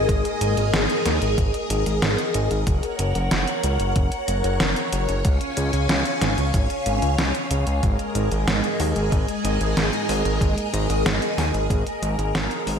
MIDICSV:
0, 0, Header, 1, 4, 480
1, 0, Start_track
1, 0, Tempo, 645161
1, 65, Time_signature, 4, 2, 24, 8
1, 9516, End_track
2, 0, Start_track
2, 0, Title_t, "String machine"
2, 0, Program_c, 0, 50
2, 0, Note_on_c, 0, 56, 83
2, 0, Note_on_c, 0, 68, 78
2, 0, Note_on_c, 0, 70, 80
2, 0, Note_on_c, 0, 75, 94
2, 1955, Note_off_c, 0, 56, 0
2, 1955, Note_off_c, 0, 68, 0
2, 1955, Note_off_c, 0, 75, 0
2, 1987, Note_on_c, 0, 78, 92
2, 1988, Note_on_c, 0, 73, 80
2, 3875, Note_off_c, 0, 70, 0
2, 3887, Note_off_c, 0, 78, 0
2, 3907, Note_on_c, 0, 61, 85
2, 3907, Note_on_c, 0, 77, 77
2, 3907, Note_on_c, 0, 80, 94
2, 5797, Note_off_c, 0, 73, 0
2, 5807, Note_off_c, 0, 61, 0
2, 5807, Note_off_c, 0, 77, 0
2, 5807, Note_off_c, 0, 80, 0
2, 5827, Note_on_c, 0, 56, 86
2, 5827, Note_on_c, 0, 68, 76
2, 5827, Note_on_c, 0, 70, 78
2, 5827, Note_on_c, 0, 75, 94
2, 9516, Note_off_c, 0, 56, 0
2, 9516, Note_off_c, 0, 68, 0
2, 9516, Note_off_c, 0, 70, 0
2, 9516, Note_off_c, 0, 75, 0
2, 9516, End_track
3, 0, Start_track
3, 0, Title_t, "Analog synth bass"
3, 0, Program_c, 1, 38
3, 66, Note_on_c, 1, 32, 108
3, 172, Note_off_c, 1, 32, 0
3, 306, Note_on_c, 1, 32, 96
3, 412, Note_off_c, 1, 32, 0
3, 426, Note_on_c, 1, 32, 82
3, 532, Note_off_c, 1, 32, 0
3, 546, Note_on_c, 1, 32, 107
3, 652, Note_off_c, 1, 32, 0
3, 786, Note_on_c, 1, 39, 96
3, 892, Note_off_c, 1, 39, 0
3, 907, Note_on_c, 1, 32, 84
3, 1012, Note_off_c, 1, 32, 0
3, 1026, Note_on_c, 1, 32, 105
3, 1132, Note_off_c, 1, 32, 0
3, 1266, Note_on_c, 1, 32, 97
3, 1372, Note_off_c, 1, 32, 0
3, 1386, Note_on_c, 1, 32, 82
3, 1492, Note_off_c, 1, 32, 0
3, 1505, Note_on_c, 1, 32, 104
3, 1612, Note_off_c, 1, 32, 0
3, 1746, Note_on_c, 1, 32, 97
3, 1852, Note_off_c, 1, 32, 0
3, 1866, Note_on_c, 1, 32, 84
3, 1972, Note_off_c, 1, 32, 0
3, 1986, Note_on_c, 1, 30, 107
3, 2092, Note_off_c, 1, 30, 0
3, 2226, Note_on_c, 1, 30, 98
3, 2332, Note_off_c, 1, 30, 0
3, 2345, Note_on_c, 1, 30, 84
3, 2452, Note_off_c, 1, 30, 0
3, 2466, Note_on_c, 1, 30, 106
3, 2572, Note_off_c, 1, 30, 0
3, 2707, Note_on_c, 1, 37, 96
3, 2812, Note_off_c, 1, 37, 0
3, 2825, Note_on_c, 1, 30, 81
3, 2932, Note_off_c, 1, 30, 0
3, 2946, Note_on_c, 1, 30, 102
3, 3052, Note_off_c, 1, 30, 0
3, 3185, Note_on_c, 1, 30, 93
3, 3292, Note_off_c, 1, 30, 0
3, 3306, Note_on_c, 1, 30, 82
3, 3412, Note_off_c, 1, 30, 0
3, 3425, Note_on_c, 1, 30, 101
3, 3532, Note_off_c, 1, 30, 0
3, 3665, Note_on_c, 1, 30, 96
3, 3772, Note_off_c, 1, 30, 0
3, 3786, Note_on_c, 1, 30, 85
3, 3892, Note_off_c, 1, 30, 0
3, 3906, Note_on_c, 1, 37, 105
3, 4012, Note_off_c, 1, 37, 0
3, 4145, Note_on_c, 1, 37, 97
3, 4252, Note_off_c, 1, 37, 0
3, 4265, Note_on_c, 1, 37, 82
3, 4372, Note_off_c, 1, 37, 0
3, 4386, Note_on_c, 1, 37, 105
3, 4492, Note_off_c, 1, 37, 0
3, 4625, Note_on_c, 1, 32, 94
3, 4732, Note_off_c, 1, 32, 0
3, 4746, Note_on_c, 1, 37, 81
3, 4852, Note_off_c, 1, 37, 0
3, 4866, Note_on_c, 1, 32, 102
3, 4972, Note_off_c, 1, 32, 0
3, 5106, Note_on_c, 1, 32, 94
3, 5212, Note_off_c, 1, 32, 0
3, 5225, Note_on_c, 1, 37, 82
3, 5332, Note_off_c, 1, 37, 0
3, 5344, Note_on_c, 1, 37, 105
3, 5451, Note_off_c, 1, 37, 0
3, 5586, Note_on_c, 1, 37, 97
3, 5692, Note_off_c, 1, 37, 0
3, 5706, Note_on_c, 1, 37, 87
3, 5812, Note_off_c, 1, 37, 0
3, 5827, Note_on_c, 1, 32, 102
3, 5932, Note_off_c, 1, 32, 0
3, 6065, Note_on_c, 1, 32, 94
3, 6172, Note_off_c, 1, 32, 0
3, 6185, Note_on_c, 1, 32, 84
3, 6292, Note_off_c, 1, 32, 0
3, 6305, Note_on_c, 1, 32, 106
3, 6412, Note_off_c, 1, 32, 0
3, 6546, Note_on_c, 1, 39, 97
3, 6652, Note_off_c, 1, 39, 0
3, 6665, Note_on_c, 1, 32, 83
3, 6772, Note_off_c, 1, 32, 0
3, 6786, Note_on_c, 1, 32, 105
3, 6892, Note_off_c, 1, 32, 0
3, 7026, Note_on_c, 1, 32, 94
3, 7132, Note_off_c, 1, 32, 0
3, 7146, Note_on_c, 1, 32, 80
3, 7252, Note_off_c, 1, 32, 0
3, 7266, Note_on_c, 1, 32, 102
3, 7372, Note_off_c, 1, 32, 0
3, 7506, Note_on_c, 1, 32, 96
3, 7612, Note_off_c, 1, 32, 0
3, 7627, Note_on_c, 1, 32, 86
3, 7733, Note_off_c, 1, 32, 0
3, 7745, Note_on_c, 1, 32, 104
3, 7852, Note_off_c, 1, 32, 0
3, 7987, Note_on_c, 1, 32, 98
3, 8093, Note_off_c, 1, 32, 0
3, 8107, Note_on_c, 1, 32, 84
3, 8213, Note_off_c, 1, 32, 0
3, 8226, Note_on_c, 1, 32, 108
3, 8332, Note_off_c, 1, 32, 0
3, 8465, Note_on_c, 1, 39, 93
3, 8572, Note_off_c, 1, 39, 0
3, 8586, Note_on_c, 1, 32, 81
3, 8692, Note_off_c, 1, 32, 0
3, 8706, Note_on_c, 1, 32, 106
3, 8812, Note_off_c, 1, 32, 0
3, 8946, Note_on_c, 1, 32, 92
3, 9052, Note_off_c, 1, 32, 0
3, 9066, Note_on_c, 1, 32, 84
3, 9172, Note_off_c, 1, 32, 0
3, 9185, Note_on_c, 1, 32, 102
3, 9292, Note_off_c, 1, 32, 0
3, 9425, Note_on_c, 1, 32, 94
3, 9516, Note_off_c, 1, 32, 0
3, 9516, End_track
4, 0, Start_track
4, 0, Title_t, "Drums"
4, 66, Note_on_c, 9, 36, 127
4, 67, Note_on_c, 9, 42, 68
4, 140, Note_off_c, 9, 36, 0
4, 142, Note_off_c, 9, 42, 0
4, 187, Note_on_c, 9, 42, 42
4, 261, Note_off_c, 9, 42, 0
4, 307, Note_on_c, 9, 42, 97
4, 381, Note_off_c, 9, 42, 0
4, 426, Note_on_c, 9, 42, 43
4, 501, Note_off_c, 9, 42, 0
4, 547, Note_on_c, 9, 38, 127
4, 547, Note_on_c, 9, 42, 71
4, 622, Note_off_c, 9, 38, 0
4, 622, Note_off_c, 9, 42, 0
4, 667, Note_on_c, 9, 42, 41
4, 741, Note_off_c, 9, 42, 0
4, 785, Note_on_c, 9, 38, 64
4, 785, Note_on_c, 9, 42, 96
4, 860, Note_off_c, 9, 38, 0
4, 860, Note_off_c, 9, 42, 0
4, 905, Note_on_c, 9, 42, 42
4, 980, Note_off_c, 9, 42, 0
4, 1026, Note_on_c, 9, 36, 126
4, 1026, Note_on_c, 9, 42, 68
4, 1101, Note_off_c, 9, 36, 0
4, 1101, Note_off_c, 9, 42, 0
4, 1146, Note_on_c, 9, 42, 44
4, 1221, Note_off_c, 9, 42, 0
4, 1266, Note_on_c, 9, 42, 100
4, 1341, Note_off_c, 9, 42, 0
4, 1386, Note_on_c, 9, 42, 44
4, 1460, Note_off_c, 9, 42, 0
4, 1505, Note_on_c, 9, 38, 124
4, 1505, Note_on_c, 9, 42, 69
4, 1579, Note_off_c, 9, 38, 0
4, 1579, Note_off_c, 9, 42, 0
4, 1625, Note_on_c, 9, 42, 43
4, 1700, Note_off_c, 9, 42, 0
4, 1744, Note_on_c, 9, 42, 98
4, 1818, Note_off_c, 9, 42, 0
4, 1866, Note_on_c, 9, 42, 43
4, 1940, Note_off_c, 9, 42, 0
4, 1985, Note_on_c, 9, 42, 68
4, 1986, Note_on_c, 9, 36, 127
4, 2059, Note_off_c, 9, 42, 0
4, 2060, Note_off_c, 9, 36, 0
4, 2106, Note_on_c, 9, 42, 43
4, 2180, Note_off_c, 9, 42, 0
4, 2224, Note_on_c, 9, 42, 96
4, 2298, Note_off_c, 9, 42, 0
4, 2345, Note_on_c, 9, 42, 43
4, 2419, Note_off_c, 9, 42, 0
4, 2465, Note_on_c, 9, 38, 127
4, 2465, Note_on_c, 9, 42, 71
4, 2539, Note_off_c, 9, 38, 0
4, 2539, Note_off_c, 9, 42, 0
4, 2585, Note_on_c, 9, 42, 40
4, 2660, Note_off_c, 9, 42, 0
4, 2704, Note_on_c, 9, 42, 96
4, 2779, Note_off_c, 9, 42, 0
4, 2824, Note_on_c, 9, 42, 42
4, 2899, Note_off_c, 9, 42, 0
4, 2944, Note_on_c, 9, 42, 68
4, 2946, Note_on_c, 9, 36, 127
4, 3018, Note_off_c, 9, 42, 0
4, 3020, Note_off_c, 9, 36, 0
4, 3063, Note_on_c, 9, 42, 41
4, 3138, Note_off_c, 9, 42, 0
4, 3184, Note_on_c, 9, 42, 95
4, 3259, Note_off_c, 9, 42, 0
4, 3305, Note_on_c, 9, 42, 41
4, 3379, Note_off_c, 9, 42, 0
4, 3423, Note_on_c, 9, 38, 126
4, 3423, Note_on_c, 9, 42, 70
4, 3497, Note_off_c, 9, 38, 0
4, 3497, Note_off_c, 9, 42, 0
4, 3544, Note_on_c, 9, 42, 42
4, 3618, Note_off_c, 9, 42, 0
4, 3664, Note_on_c, 9, 42, 97
4, 3739, Note_off_c, 9, 42, 0
4, 3784, Note_on_c, 9, 42, 42
4, 3858, Note_off_c, 9, 42, 0
4, 3903, Note_on_c, 9, 42, 67
4, 3906, Note_on_c, 9, 36, 127
4, 3978, Note_off_c, 9, 42, 0
4, 3981, Note_off_c, 9, 36, 0
4, 4023, Note_on_c, 9, 42, 40
4, 4098, Note_off_c, 9, 42, 0
4, 4143, Note_on_c, 9, 42, 93
4, 4218, Note_off_c, 9, 42, 0
4, 4264, Note_on_c, 9, 42, 40
4, 4338, Note_off_c, 9, 42, 0
4, 4384, Note_on_c, 9, 38, 127
4, 4384, Note_on_c, 9, 42, 69
4, 4459, Note_off_c, 9, 38, 0
4, 4459, Note_off_c, 9, 42, 0
4, 4504, Note_on_c, 9, 42, 38
4, 4579, Note_off_c, 9, 42, 0
4, 4624, Note_on_c, 9, 38, 64
4, 4624, Note_on_c, 9, 42, 92
4, 4698, Note_off_c, 9, 38, 0
4, 4698, Note_off_c, 9, 42, 0
4, 4745, Note_on_c, 9, 42, 40
4, 4820, Note_off_c, 9, 42, 0
4, 4865, Note_on_c, 9, 42, 67
4, 4867, Note_on_c, 9, 36, 123
4, 4940, Note_off_c, 9, 42, 0
4, 4941, Note_off_c, 9, 36, 0
4, 4985, Note_on_c, 9, 42, 40
4, 5059, Note_off_c, 9, 42, 0
4, 5104, Note_on_c, 9, 42, 93
4, 5178, Note_off_c, 9, 42, 0
4, 5225, Note_on_c, 9, 42, 40
4, 5299, Note_off_c, 9, 42, 0
4, 5345, Note_on_c, 9, 38, 127
4, 5345, Note_on_c, 9, 42, 67
4, 5420, Note_off_c, 9, 38, 0
4, 5420, Note_off_c, 9, 42, 0
4, 5466, Note_on_c, 9, 42, 40
4, 5540, Note_off_c, 9, 42, 0
4, 5585, Note_on_c, 9, 42, 93
4, 5659, Note_off_c, 9, 42, 0
4, 5704, Note_on_c, 9, 42, 40
4, 5779, Note_off_c, 9, 42, 0
4, 5825, Note_on_c, 9, 42, 63
4, 5827, Note_on_c, 9, 36, 121
4, 5900, Note_off_c, 9, 42, 0
4, 5901, Note_off_c, 9, 36, 0
4, 5946, Note_on_c, 9, 42, 38
4, 6020, Note_off_c, 9, 42, 0
4, 6065, Note_on_c, 9, 42, 88
4, 6139, Note_off_c, 9, 42, 0
4, 6186, Note_on_c, 9, 42, 40
4, 6261, Note_off_c, 9, 42, 0
4, 6306, Note_on_c, 9, 38, 122
4, 6306, Note_on_c, 9, 42, 67
4, 6380, Note_off_c, 9, 38, 0
4, 6380, Note_off_c, 9, 42, 0
4, 6426, Note_on_c, 9, 42, 38
4, 6501, Note_off_c, 9, 42, 0
4, 6545, Note_on_c, 9, 46, 81
4, 6620, Note_off_c, 9, 46, 0
4, 6666, Note_on_c, 9, 42, 40
4, 6740, Note_off_c, 9, 42, 0
4, 6786, Note_on_c, 9, 36, 121
4, 6787, Note_on_c, 9, 42, 63
4, 6861, Note_off_c, 9, 36, 0
4, 6861, Note_off_c, 9, 42, 0
4, 6907, Note_on_c, 9, 42, 39
4, 6982, Note_off_c, 9, 42, 0
4, 7028, Note_on_c, 9, 42, 91
4, 7103, Note_off_c, 9, 42, 0
4, 7148, Note_on_c, 9, 42, 39
4, 7223, Note_off_c, 9, 42, 0
4, 7269, Note_on_c, 9, 38, 121
4, 7269, Note_on_c, 9, 42, 64
4, 7344, Note_off_c, 9, 38, 0
4, 7344, Note_off_c, 9, 42, 0
4, 7389, Note_on_c, 9, 42, 38
4, 7463, Note_off_c, 9, 42, 0
4, 7509, Note_on_c, 9, 46, 80
4, 7583, Note_off_c, 9, 46, 0
4, 7629, Note_on_c, 9, 42, 39
4, 7703, Note_off_c, 9, 42, 0
4, 7746, Note_on_c, 9, 36, 115
4, 7749, Note_on_c, 9, 42, 62
4, 7820, Note_off_c, 9, 36, 0
4, 7823, Note_off_c, 9, 42, 0
4, 7869, Note_on_c, 9, 42, 39
4, 7943, Note_off_c, 9, 42, 0
4, 7988, Note_on_c, 9, 42, 88
4, 8062, Note_off_c, 9, 42, 0
4, 8109, Note_on_c, 9, 42, 39
4, 8183, Note_off_c, 9, 42, 0
4, 8229, Note_on_c, 9, 38, 116
4, 8229, Note_on_c, 9, 42, 65
4, 8303, Note_off_c, 9, 38, 0
4, 8303, Note_off_c, 9, 42, 0
4, 8348, Note_on_c, 9, 42, 38
4, 8423, Note_off_c, 9, 42, 0
4, 8469, Note_on_c, 9, 38, 58
4, 8469, Note_on_c, 9, 46, 83
4, 8543, Note_off_c, 9, 38, 0
4, 8543, Note_off_c, 9, 46, 0
4, 8589, Note_on_c, 9, 42, 38
4, 8663, Note_off_c, 9, 42, 0
4, 8706, Note_on_c, 9, 36, 115
4, 8708, Note_on_c, 9, 42, 62
4, 8780, Note_off_c, 9, 36, 0
4, 8782, Note_off_c, 9, 42, 0
4, 8828, Note_on_c, 9, 42, 39
4, 8902, Note_off_c, 9, 42, 0
4, 8947, Note_on_c, 9, 42, 90
4, 9022, Note_off_c, 9, 42, 0
4, 9068, Note_on_c, 9, 42, 39
4, 9143, Note_off_c, 9, 42, 0
4, 9188, Note_on_c, 9, 38, 121
4, 9188, Note_on_c, 9, 42, 66
4, 9263, Note_off_c, 9, 38, 0
4, 9263, Note_off_c, 9, 42, 0
4, 9308, Note_on_c, 9, 42, 39
4, 9382, Note_off_c, 9, 42, 0
4, 9427, Note_on_c, 9, 46, 83
4, 9501, Note_off_c, 9, 46, 0
4, 9516, End_track
0, 0, End_of_file